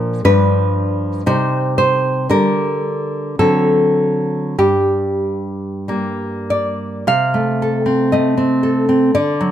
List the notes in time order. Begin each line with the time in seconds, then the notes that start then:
Already playing: A#2 F3 D4 A#4
0.25 G2 F3 D4 B4
1.26 C3 G3 D#4 C5
1.78 C5
2.30 D3 G3 D4 A#4
3.39 D3 F#3 C4 A4
4.58 G2 G4
5.88 G3 A#3
6.50 D5
7.07 C3 F5
7.34 A3
7.62 A4
7.86 C4
8.12 A3 D#5
8.38 C4
8.63 A4
8.89 C4
9.15 D3 D5
9.41 F#3